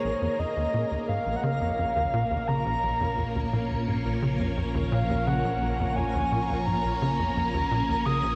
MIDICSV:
0, 0, Header, 1, 6, 480
1, 0, Start_track
1, 0, Key_signature, -5, "minor"
1, 0, Tempo, 697674
1, 28, Time_signature, 4, 2, 24, 8
1, 5746, End_track
2, 0, Start_track
2, 0, Title_t, "Soft synth lead"
2, 0, Program_c, 0, 80
2, 0, Note_on_c, 0, 73, 93
2, 269, Note_on_c, 0, 75, 99
2, 279, Note_off_c, 0, 73, 0
2, 747, Note_on_c, 0, 77, 96
2, 757, Note_off_c, 0, 75, 0
2, 933, Note_off_c, 0, 77, 0
2, 937, Note_on_c, 0, 78, 70
2, 987, Note_on_c, 0, 77, 112
2, 997, Note_off_c, 0, 78, 0
2, 1703, Note_on_c, 0, 82, 115
2, 1713, Note_off_c, 0, 77, 0
2, 2425, Note_off_c, 0, 82, 0
2, 3387, Note_on_c, 0, 77, 82
2, 3623, Note_on_c, 0, 78, 94
2, 3633, Note_off_c, 0, 77, 0
2, 4099, Note_on_c, 0, 80, 97
2, 4110, Note_off_c, 0, 78, 0
2, 4579, Note_on_c, 0, 82, 97
2, 4590, Note_off_c, 0, 80, 0
2, 4815, Note_off_c, 0, 82, 0
2, 4819, Note_on_c, 0, 82, 114
2, 5541, Note_on_c, 0, 87, 116
2, 5551, Note_off_c, 0, 82, 0
2, 5746, Note_off_c, 0, 87, 0
2, 5746, End_track
3, 0, Start_track
3, 0, Title_t, "String machine"
3, 0, Program_c, 1, 50
3, 0, Note_on_c, 1, 58, 76
3, 0, Note_on_c, 1, 63, 72
3, 0, Note_on_c, 1, 68, 79
3, 0, Note_on_c, 1, 70, 89
3, 0, Note_on_c, 1, 75, 70
3, 253, Note_on_c, 1, 61, 91
3, 666, Note_off_c, 1, 63, 0
3, 846, Note_on_c, 1, 53, 77
3, 1036, Note_off_c, 1, 68, 0
3, 1068, Note_on_c, 1, 73, 75
3, 1253, Note_off_c, 1, 75, 0
3, 1737, Note_off_c, 1, 70, 0
3, 5746, Note_off_c, 1, 53, 0
3, 5746, Note_off_c, 1, 58, 0
3, 5746, Note_off_c, 1, 61, 0
3, 5746, Note_off_c, 1, 73, 0
3, 5746, End_track
4, 0, Start_track
4, 0, Title_t, "Synth texture"
4, 0, Program_c, 2, 99
4, 26, Note_on_c, 2, 70, 88
4, 27, Note_on_c, 2, 58, 88
4, 5746, Note_off_c, 2, 58, 0
4, 5746, Note_off_c, 2, 70, 0
4, 5746, End_track
5, 0, Start_track
5, 0, Title_t, "Analog synth bass"
5, 0, Program_c, 3, 38
5, 29, Note_on_c, 3, 34, 78
5, 105, Note_off_c, 3, 34, 0
5, 149, Note_on_c, 3, 41, 100
5, 194, Note_off_c, 3, 41, 0
5, 269, Note_on_c, 3, 41, 75
5, 314, Note_off_c, 3, 41, 0
5, 390, Note_on_c, 3, 39, 98
5, 465, Note_off_c, 3, 39, 0
5, 508, Note_on_c, 3, 46, 95
5, 584, Note_off_c, 3, 46, 0
5, 628, Note_on_c, 3, 39, 74
5, 674, Note_off_c, 3, 39, 0
5, 748, Note_on_c, 3, 44, 76
5, 824, Note_off_c, 3, 44, 0
5, 868, Note_on_c, 3, 34, 76
5, 944, Note_off_c, 3, 34, 0
5, 987, Note_on_c, 3, 49, 95
5, 1101, Note_off_c, 3, 49, 0
5, 1109, Note_on_c, 3, 41, 73
5, 1185, Note_off_c, 3, 41, 0
5, 1229, Note_on_c, 3, 41, 73
5, 1274, Note_off_c, 3, 41, 0
5, 1350, Note_on_c, 3, 39, 98
5, 1425, Note_off_c, 3, 39, 0
5, 1469, Note_on_c, 3, 46, 99
5, 1545, Note_off_c, 3, 46, 0
5, 1589, Note_on_c, 3, 39, 73
5, 1634, Note_off_c, 3, 39, 0
5, 1709, Note_on_c, 3, 49, 76
5, 1822, Note_off_c, 3, 49, 0
5, 1829, Note_on_c, 3, 34, 103
5, 1905, Note_off_c, 3, 34, 0
5, 1949, Note_on_c, 3, 34, 77
5, 2025, Note_off_c, 3, 34, 0
5, 2069, Note_on_c, 3, 41, 102
5, 2114, Note_off_c, 3, 41, 0
5, 2188, Note_on_c, 3, 41, 77
5, 2234, Note_off_c, 3, 41, 0
5, 2308, Note_on_c, 3, 39, 99
5, 2385, Note_off_c, 3, 39, 0
5, 2428, Note_on_c, 3, 46, 100
5, 2505, Note_off_c, 3, 46, 0
5, 2548, Note_on_c, 3, 39, 75
5, 2594, Note_off_c, 3, 39, 0
5, 2667, Note_on_c, 3, 44, 77
5, 2744, Note_off_c, 3, 44, 0
5, 2787, Note_on_c, 3, 34, 75
5, 2864, Note_off_c, 3, 34, 0
5, 2906, Note_on_c, 3, 49, 96
5, 3021, Note_off_c, 3, 49, 0
5, 3026, Note_on_c, 3, 41, 75
5, 3103, Note_off_c, 3, 41, 0
5, 3145, Note_on_c, 3, 41, 76
5, 3192, Note_off_c, 3, 41, 0
5, 3263, Note_on_c, 3, 39, 98
5, 3342, Note_off_c, 3, 39, 0
5, 3384, Note_on_c, 3, 46, 98
5, 3462, Note_off_c, 3, 46, 0
5, 3506, Note_on_c, 3, 39, 77
5, 3553, Note_off_c, 3, 39, 0
5, 3627, Note_on_c, 3, 49, 74
5, 3741, Note_off_c, 3, 49, 0
5, 3747, Note_on_c, 3, 34, 103
5, 3824, Note_off_c, 3, 34, 0
5, 3868, Note_on_c, 3, 34, 80
5, 3944, Note_off_c, 3, 34, 0
5, 3988, Note_on_c, 3, 41, 103
5, 4034, Note_off_c, 3, 41, 0
5, 4109, Note_on_c, 3, 41, 78
5, 4154, Note_off_c, 3, 41, 0
5, 4228, Note_on_c, 3, 39, 104
5, 4305, Note_off_c, 3, 39, 0
5, 4347, Note_on_c, 3, 46, 98
5, 4424, Note_off_c, 3, 46, 0
5, 4468, Note_on_c, 3, 39, 74
5, 4513, Note_off_c, 3, 39, 0
5, 4588, Note_on_c, 3, 44, 76
5, 4664, Note_off_c, 3, 44, 0
5, 4707, Note_on_c, 3, 34, 75
5, 4784, Note_off_c, 3, 34, 0
5, 4829, Note_on_c, 3, 49, 100
5, 4942, Note_off_c, 3, 49, 0
5, 4949, Note_on_c, 3, 41, 75
5, 5025, Note_off_c, 3, 41, 0
5, 5068, Note_on_c, 3, 41, 75
5, 5114, Note_off_c, 3, 41, 0
5, 5187, Note_on_c, 3, 39, 101
5, 5264, Note_off_c, 3, 39, 0
5, 5306, Note_on_c, 3, 46, 97
5, 5383, Note_off_c, 3, 46, 0
5, 5427, Note_on_c, 3, 39, 78
5, 5473, Note_off_c, 3, 39, 0
5, 5546, Note_on_c, 3, 49, 74
5, 5661, Note_off_c, 3, 49, 0
5, 5665, Note_on_c, 3, 34, 98
5, 5743, Note_off_c, 3, 34, 0
5, 5746, End_track
6, 0, Start_track
6, 0, Title_t, "Synth drone"
6, 0, Program_c, 4, 95
6, 27, Note_on_c, 4, 34, 88
6, 5746, Note_off_c, 4, 34, 0
6, 5746, End_track
0, 0, End_of_file